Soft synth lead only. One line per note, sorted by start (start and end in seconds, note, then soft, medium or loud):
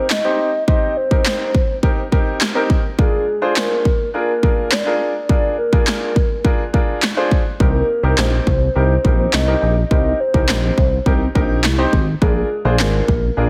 0.10 0.64 D#5 loud
0.68 0.98 D#5 loud
0.97 2.12 C5 loud
2.99 3.52 G#4 medium
3.56 4.10 A#4 loud
4.14 4.73 A#4 loud
4.72 5.29 D5 loud
5.29 5.56 D5 loud
5.58 6.70 A#4 loud
7.60 8.19 A#4 medium
8.18 8.75 C5 loud
8.76 9.35 C5 loud
9.33 9.90 D#5 loud
9.91 10.21 D#5 loud
10.20 11.35 C5 loud
12.22 12.81 G#4 medium
12.79 13.37 A#4 medium
13.37 13.49 A#4 loud